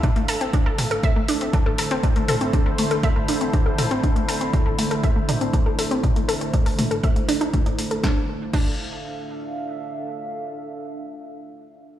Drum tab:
CC |----------------|----------------|----------------|----------------|
HH |xxoxx-oxx-oxx-ox|xxoxx-oxx-oxx-ox|xxoxx-oxx-oxx-ox|xxoxxooxxxoxxxox|
SD |----------------|----------------|----------------|----------------|
T2 |o-----o-----o---|--o-----o-----o-|----o-----o-----|o-----o-----o---|
BD |o---o---o---o---|o---o---o---o---|o---o---o---o---|o---o---o---o---|

CC |----x-----------|----------------|
HH |----------------|----------------|
SD |o---------------|----------------|
T2 |----------------|----------------|
BD |o---o-----------|----------------|